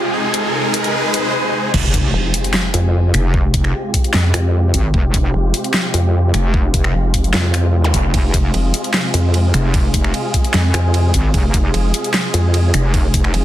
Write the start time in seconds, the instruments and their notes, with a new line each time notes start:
Already playing: supersaw synth C3 G#3 F4 G4, ambient pad G#3 F4 G5, riser
0.14 supersaw synth D#4 G#4, ambient pad D#4
0.34 closed hi-hat
0.47 ambient pad C5
0.54 ambient pad G#5
0.74 closed hi-hat
0.84 closed hi-hat
1.14 closed hi-hat
1.74 wobble bass F1, supersaw synth C3 G#3 F4 G4, kick, crash, impact
1.94 kick, closed hi-hat
2.14 wobble bass F1
2.34 closed hi-hat
2.44 closed hi-hat
2.54 finger snap, snare, clap
2.74 wobble bass F2, closed hi-hat
3.14 wobble bass F1, finger snap, closed hi-hat
3.34 kick
3.54 kick, closed hi-hat
3.64 finger snap
3.94 kick, closed hi-hat
4.04 closed hi-hat
4.14 wobble bass F2, snare, clap
4.34 wobble bass F2, finger snap, closed hi-hat
4.74 wobble bass G#1, kick, closed hi-hat
4.94 wobble bass F1, kick
5.14 kick, closed hi-hat
5.34 wobble bass F1
5.54 closed hi-hat
5.64 closed hi-hat
5.74 finger snap, snare, clap
5.94 wobble bass F2, closed hi-hat
6.34 wobble bass F1, finger snap, closed hi-hat
6.54 kick
6.74 kick, closed hi-hat
6.84 finger snap
6.94 wobble bass F1
7.14 kick, closed hi-hat
7.24 closed hi-hat
7.34 wobble bass F2, snare, clap
7.54 finger snap, closed hi-hat
7.75 wobble bass E2
7.84 zap
7.94 wobble bass F1, kick, closed hi-hat
8.14 wobble bass F1, supersaw synth G#4, kick, ride
8.34 kick, closed hi-hat
8.54 wobble bass F1, ride
8.74 closed hi-hat
8.84 closed hi-hat
8.94 finger snap, snare, clap, ride
9.14 wobble bass F2, closed hi-hat
9.34 ride
9.54 wobble bass F1, finger snap, closed hi-hat
9.74 kick, ride
9.94 kick, closed hi-hat
10.04 finger snap
10.14 ride
10.34 kick, closed hi-hat
10.44 closed hi-hat
10.54 wobble bass F2, snare, clap, ride
10.74 wobble bass F2, finger snap, closed hi-hat
10.94 ride
11.14 wobble bass G#1, kick, closed hi-hat
11.34 wobble bass F1, kick, ride
11.54 kick, closed hi-hat
11.74 wobble bass F1, ride
11.94 closed hi-hat
12.04 closed hi-hat
12.14 finger snap, snare, clap, ride
12.34 wobble bass F2, closed hi-hat
12.54 ride
12.74 wobble bass F1, finger snap, closed hi-hat
12.94 kick, ride
13.14 kick, closed hi-hat
13.24 finger snap
13.34 wobble bass F1, ride